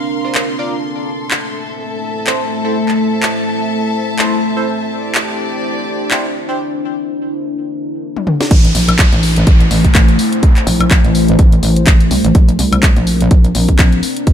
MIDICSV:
0, 0, Header, 1, 7, 480
1, 0, Start_track
1, 0, Tempo, 480000
1, 829, Time_signature, 4, 2, 24, 8
1, 14331, End_track
2, 0, Start_track
2, 0, Title_t, "String section"
2, 0, Program_c, 0, 48
2, 0, Note_on_c, 0, 70, 62
2, 0, Note_on_c, 0, 77, 76
2, 0, Note_on_c, 0, 84, 67
2, 827, Note_on_c, 0, 69, 81
2, 828, Note_off_c, 0, 77, 0
2, 829, Note_off_c, 0, 70, 0
2, 1336, Note_on_c, 0, 76, 62
2, 1710, Note_off_c, 0, 84, 0
2, 1809, Note_on_c, 0, 81, 82
2, 4667, Note_on_c, 0, 60, 73
2, 4950, Note_on_c, 0, 74, 84
2, 5020, Note_on_c, 0, 67, 70
2, 5974, Note_off_c, 0, 69, 0
2, 6217, Note_off_c, 0, 76, 0
2, 6218, Note_off_c, 0, 81, 0
2, 6588, Note_off_c, 0, 60, 0
2, 6588, Note_off_c, 0, 67, 0
2, 6588, Note_off_c, 0, 74, 0
2, 14331, End_track
3, 0, Start_track
3, 0, Title_t, "Synth stab"
3, 0, Program_c, 1, 62
3, 244, Note_on_c, 1, 62, 74
3, 244, Note_on_c, 1, 65, 72
3, 244, Note_on_c, 1, 70, 66
3, 244, Note_on_c, 1, 72, 84
3, 458, Note_off_c, 1, 62, 0
3, 458, Note_off_c, 1, 65, 0
3, 458, Note_off_c, 1, 70, 0
3, 458, Note_off_c, 1, 72, 0
3, 588, Note_on_c, 1, 62, 91
3, 588, Note_on_c, 1, 65, 82
3, 588, Note_on_c, 1, 70, 82
3, 588, Note_on_c, 1, 74, 101
3, 738, Note_off_c, 1, 62, 0
3, 738, Note_off_c, 1, 65, 0
3, 738, Note_off_c, 1, 70, 0
3, 738, Note_off_c, 1, 74, 0
3, 2268, Note_on_c, 1, 64, 78
3, 2268, Note_on_c, 1, 69, 79
3, 2269, Note_on_c, 1, 60, 88
3, 2269, Note_on_c, 1, 72, 94
3, 2418, Note_off_c, 1, 60, 0
3, 2418, Note_off_c, 1, 64, 0
3, 2418, Note_off_c, 1, 69, 0
3, 2418, Note_off_c, 1, 72, 0
3, 2645, Note_on_c, 1, 64, 85
3, 2645, Note_on_c, 1, 69, 82
3, 2645, Note_on_c, 1, 72, 98
3, 2646, Note_on_c, 1, 60, 90
3, 2767, Note_off_c, 1, 60, 0
3, 2767, Note_off_c, 1, 64, 0
3, 2767, Note_off_c, 1, 69, 0
3, 2767, Note_off_c, 1, 72, 0
3, 4189, Note_on_c, 1, 60, 89
3, 4189, Note_on_c, 1, 64, 81
3, 4189, Note_on_c, 1, 69, 80
3, 4189, Note_on_c, 1, 72, 97
3, 4338, Note_off_c, 1, 60, 0
3, 4338, Note_off_c, 1, 72, 0
3, 4339, Note_off_c, 1, 64, 0
3, 4339, Note_off_c, 1, 69, 0
3, 4565, Note_on_c, 1, 60, 87
3, 4565, Note_on_c, 1, 64, 82
3, 4565, Note_on_c, 1, 69, 83
3, 4565, Note_on_c, 1, 72, 100
3, 4656, Note_off_c, 1, 60, 0
3, 4656, Note_off_c, 1, 64, 0
3, 4656, Note_off_c, 1, 69, 0
3, 4657, Note_off_c, 1, 72, 0
3, 6108, Note_on_c, 1, 62, 84
3, 6108, Note_on_c, 1, 72, 99
3, 6109, Note_on_c, 1, 64, 83
3, 6109, Note_on_c, 1, 67, 81
3, 6258, Note_off_c, 1, 62, 0
3, 6258, Note_off_c, 1, 64, 0
3, 6258, Note_off_c, 1, 67, 0
3, 6258, Note_off_c, 1, 72, 0
3, 6485, Note_on_c, 1, 62, 90
3, 6485, Note_on_c, 1, 67, 84
3, 6485, Note_on_c, 1, 72, 99
3, 6486, Note_on_c, 1, 64, 83
3, 6589, Note_off_c, 1, 62, 0
3, 6589, Note_off_c, 1, 64, 0
3, 6589, Note_off_c, 1, 67, 0
3, 6589, Note_off_c, 1, 72, 0
3, 14331, End_track
4, 0, Start_track
4, 0, Title_t, "Ambient pad"
4, 0, Program_c, 2, 92
4, 0, Note_on_c, 2, 60, 74
4, 0, Note_on_c, 2, 62, 69
4, 0, Note_on_c, 2, 70, 83
4, 790, Note_off_c, 2, 62, 0
4, 790, Note_off_c, 2, 70, 0
4, 791, Note_off_c, 2, 60, 0
4, 828, Note_on_c, 2, 57, 78
4, 828, Note_on_c, 2, 64, 67
4, 828, Note_on_c, 2, 72, 88
4, 4630, Note_off_c, 2, 57, 0
4, 4670, Note_on_c, 2, 62, 78
4, 6549, Note_off_c, 2, 72, 0
4, 6591, Note_on_c, 2, 70, 87
4, 8468, Note_off_c, 2, 64, 0
4, 8471, Note_off_c, 2, 62, 0
4, 8491, Note_off_c, 2, 70, 0
4, 8510, Note_on_c, 2, 72, 89
4, 8511, Note_on_c, 2, 57, 81
4, 8511, Note_on_c, 2, 64, 74
4, 12311, Note_off_c, 2, 72, 0
4, 12312, Note_off_c, 2, 57, 0
4, 12312, Note_off_c, 2, 64, 0
4, 12351, Note_on_c, 2, 62, 71
4, 12352, Note_on_c, 2, 60, 81
4, 12352, Note_on_c, 2, 70, 89
4, 14251, Note_off_c, 2, 70, 0
4, 14271, Note_on_c, 2, 69, 87
4, 14331, Note_off_c, 2, 60, 0
4, 14331, Note_off_c, 2, 62, 0
4, 14331, Note_off_c, 2, 69, 0
4, 14331, End_track
5, 0, Start_track
5, 0, Title_t, "Wobble bass"
5, 0, Program_c, 3, 39
5, 8509, Note_on_c, 3, 33, 101
5, 8732, Note_off_c, 3, 33, 0
5, 8749, Note_on_c, 3, 34, 96
5, 9103, Note_off_c, 3, 34, 0
5, 9125, Note_on_c, 3, 33, 101
5, 9452, Note_off_c, 3, 33, 0
5, 9708, Note_on_c, 3, 33, 98
5, 10172, Note_off_c, 3, 33, 0
5, 10668, Note_on_c, 3, 34, 101
5, 11022, Note_off_c, 3, 34, 0
5, 11045, Note_on_c, 3, 33, 99
5, 11372, Note_off_c, 3, 33, 0
5, 11630, Note_on_c, 3, 33, 99
5, 12093, Note_off_c, 3, 33, 0
5, 12110, Note_on_c, 3, 36, 95
5, 12224, Note_off_c, 3, 36, 0
5, 12246, Note_on_c, 3, 33, 94
5, 12333, Note_off_c, 3, 33, 0
5, 12590, Note_on_c, 3, 36, 97
5, 12943, Note_off_c, 3, 36, 0
5, 12966, Note_on_c, 3, 34, 103
5, 13293, Note_off_c, 3, 34, 0
5, 13549, Note_on_c, 3, 34, 97
5, 14013, Note_off_c, 3, 34, 0
5, 14331, End_track
6, 0, Start_track
6, 0, Title_t, "Downlifter"
6, 0, Program_c, 4, 103
6, 8510, Note_on_c, 4, 60, 77
6, 12349, Note_off_c, 4, 60, 0
6, 14331, End_track
7, 0, Start_track
7, 0, Title_t, "Drums"
7, 348, Note_on_c, 9, 39, 109
7, 448, Note_off_c, 9, 39, 0
7, 1307, Note_on_c, 9, 39, 101
7, 1407, Note_off_c, 9, 39, 0
7, 2268, Note_on_c, 9, 39, 105
7, 2368, Note_off_c, 9, 39, 0
7, 2884, Note_on_c, 9, 39, 33
7, 2984, Note_off_c, 9, 39, 0
7, 3227, Note_on_c, 9, 39, 104
7, 3327, Note_off_c, 9, 39, 0
7, 4187, Note_on_c, 9, 39, 110
7, 4287, Note_off_c, 9, 39, 0
7, 5148, Note_on_c, 9, 39, 112
7, 5248, Note_off_c, 9, 39, 0
7, 6108, Note_on_c, 9, 39, 112
7, 6208, Note_off_c, 9, 39, 0
7, 8165, Note_on_c, 9, 48, 46
7, 8265, Note_off_c, 9, 48, 0
7, 8269, Note_on_c, 9, 47, 74
7, 8369, Note_off_c, 9, 47, 0
7, 8406, Note_on_c, 9, 38, 80
7, 8506, Note_off_c, 9, 38, 0
7, 8509, Note_on_c, 9, 36, 115
7, 8510, Note_on_c, 9, 42, 69
7, 8510, Note_on_c, 9, 49, 104
7, 8609, Note_off_c, 9, 36, 0
7, 8610, Note_off_c, 9, 42, 0
7, 8610, Note_off_c, 9, 49, 0
7, 8645, Note_on_c, 9, 42, 40
7, 8745, Note_off_c, 9, 42, 0
7, 8749, Note_on_c, 9, 46, 109
7, 8849, Note_off_c, 9, 46, 0
7, 8886, Note_on_c, 9, 42, 55
7, 8886, Note_on_c, 9, 76, 63
7, 8986, Note_off_c, 9, 42, 0
7, 8986, Note_off_c, 9, 76, 0
7, 8988, Note_on_c, 9, 39, 123
7, 8989, Note_on_c, 9, 36, 116
7, 8989, Note_on_c, 9, 42, 66
7, 9088, Note_off_c, 9, 39, 0
7, 9089, Note_off_c, 9, 36, 0
7, 9089, Note_off_c, 9, 42, 0
7, 9125, Note_on_c, 9, 42, 38
7, 9225, Note_off_c, 9, 42, 0
7, 9229, Note_on_c, 9, 46, 105
7, 9329, Note_off_c, 9, 46, 0
7, 9364, Note_on_c, 9, 42, 56
7, 9464, Note_off_c, 9, 42, 0
7, 9469, Note_on_c, 9, 42, 67
7, 9470, Note_on_c, 9, 36, 118
7, 9569, Note_off_c, 9, 42, 0
7, 9570, Note_off_c, 9, 36, 0
7, 9605, Note_on_c, 9, 42, 37
7, 9705, Note_off_c, 9, 42, 0
7, 9708, Note_on_c, 9, 46, 103
7, 9808, Note_off_c, 9, 46, 0
7, 9845, Note_on_c, 9, 42, 53
7, 9846, Note_on_c, 9, 36, 63
7, 9945, Note_off_c, 9, 42, 0
7, 9946, Note_off_c, 9, 36, 0
7, 9948, Note_on_c, 9, 39, 127
7, 9949, Note_on_c, 9, 36, 125
7, 9949, Note_on_c, 9, 42, 71
7, 10048, Note_off_c, 9, 39, 0
7, 10049, Note_off_c, 9, 36, 0
7, 10049, Note_off_c, 9, 42, 0
7, 10085, Note_on_c, 9, 42, 37
7, 10185, Note_off_c, 9, 42, 0
7, 10189, Note_on_c, 9, 46, 109
7, 10289, Note_off_c, 9, 46, 0
7, 10325, Note_on_c, 9, 42, 59
7, 10425, Note_off_c, 9, 42, 0
7, 10428, Note_on_c, 9, 42, 67
7, 10429, Note_on_c, 9, 36, 120
7, 10528, Note_off_c, 9, 42, 0
7, 10529, Note_off_c, 9, 36, 0
7, 10565, Note_on_c, 9, 39, 39
7, 10565, Note_on_c, 9, 42, 38
7, 10665, Note_off_c, 9, 39, 0
7, 10665, Note_off_c, 9, 42, 0
7, 10669, Note_on_c, 9, 46, 115
7, 10769, Note_off_c, 9, 46, 0
7, 10805, Note_on_c, 9, 42, 53
7, 10805, Note_on_c, 9, 76, 63
7, 10905, Note_off_c, 9, 42, 0
7, 10905, Note_off_c, 9, 76, 0
7, 10908, Note_on_c, 9, 39, 123
7, 10908, Note_on_c, 9, 42, 66
7, 10909, Note_on_c, 9, 36, 122
7, 11008, Note_off_c, 9, 39, 0
7, 11008, Note_off_c, 9, 42, 0
7, 11009, Note_off_c, 9, 36, 0
7, 11044, Note_on_c, 9, 42, 35
7, 11144, Note_off_c, 9, 42, 0
7, 11148, Note_on_c, 9, 46, 113
7, 11248, Note_off_c, 9, 46, 0
7, 11284, Note_on_c, 9, 42, 51
7, 11384, Note_off_c, 9, 42, 0
7, 11388, Note_on_c, 9, 42, 67
7, 11390, Note_on_c, 9, 36, 123
7, 11488, Note_off_c, 9, 42, 0
7, 11490, Note_off_c, 9, 36, 0
7, 11524, Note_on_c, 9, 42, 36
7, 11624, Note_off_c, 9, 42, 0
7, 11628, Note_on_c, 9, 46, 108
7, 11728, Note_off_c, 9, 46, 0
7, 11764, Note_on_c, 9, 42, 53
7, 11864, Note_off_c, 9, 42, 0
7, 11868, Note_on_c, 9, 39, 127
7, 11868, Note_on_c, 9, 42, 69
7, 11870, Note_on_c, 9, 36, 127
7, 11968, Note_off_c, 9, 39, 0
7, 11968, Note_off_c, 9, 42, 0
7, 11970, Note_off_c, 9, 36, 0
7, 12005, Note_on_c, 9, 42, 36
7, 12105, Note_off_c, 9, 42, 0
7, 12109, Note_on_c, 9, 46, 114
7, 12209, Note_off_c, 9, 46, 0
7, 12245, Note_on_c, 9, 42, 54
7, 12345, Note_off_c, 9, 42, 0
7, 12349, Note_on_c, 9, 42, 64
7, 12350, Note_on_c, 9, 36, 124
7, 12449, Note_off_c, 9, 42, 0
7, 12450, Note_off_c, 9, 36, 0
7, 12486, Note_on_c, 9, 42, 37
7, 12586, Note_off_c, 9, 42, 0
7, 12590, Note_on_c, 9, 46, 118
7, 12690, Note_off_c, 9, 46, 0
7, 12725, Note_on_c, 9, 42, 51
7, 12725, Note_on_c, 9, 76, 65
7, 12825, Note_off_c, 9, 42, 0
7, 12825, Note_off_c, 9, 76, 0
7, 12829, Note_on_c, 9, 39, 119
7, 12829, Note_on_c, 9, 42, 63
7, 12830, Note_on_c, 9, 36, 127
7, 12929, Note_off_c, 9, 39, 0
7, 12929, Note_off_c, 9, 42, 0
7, 12930, Note_off_c, 9, 36, 0
7, 12965, Note_on_c, 9, 42, 36
7, 13065, Note_off_c, 9, 42, 0
7, 13069, Note_on_c, 9, 46, 113
7, 13169, Note_off_c, 9, 46, 0
7, 13205, Note_on_c, 9, 42, 50
7, 13305, Note_off_c, 9, 42, 0
7, 13309, Note_on_c, 9, 42, 64
7, 13310, Note_on_c, 9, 36, 119
7, 13409, Note_off_c, 9, 42, 0
7, 13410, Note_off_c, 9, 36, 0
7, 13445, Note_on_c, 9, 42, 37
7, 13545, Note_off_c, 9, 42, 0
7, 13548, Note_on_c, 9, 46, 107
7, 13648, Note_off_c, 9, 46, 0
7, 13685, Note_on_c, 9, 42, 50
7, 13686, Note_on_c, 9, 36, 68
7, 13785, Note_off_c, 9, 42, 0
7, 13786, Note_off_c, 9, 36, 0
7, 13788, Note_on_c, 9, 39, 125
7, 13789, Note_on_c, 9, 42, 66
7, 13790, Note_on_c, 9, 36, 127
7, 13888, Note_off_c, 9, 39, 0
7, 13889, Note_off_c, 9, 42, 0
7, 13890, Note_off_c, 9, 36, 0
7, 13925, Note_on_c, 9, 42, 36
7, 14025, Note_off_c, 9, 42, 0
7, 14029, Note_on_c, 9, 46, 110
7, 14129, Note_off_c, 9, 46, 0
7, 14165, Note_on_c, 9, 42, 55
7, 14265, Note_off_c, 9, 42, 0
7, 14269, Note_on_c, 9, 42, 62
7, 14270, Note_on_c, 9, 36, 121
7, 14331, Note_off_c, 9, 36, 0
7, 14331, Note_off_c, 9, 42, 0
7, 14331, End_track
0, 0, End_of_file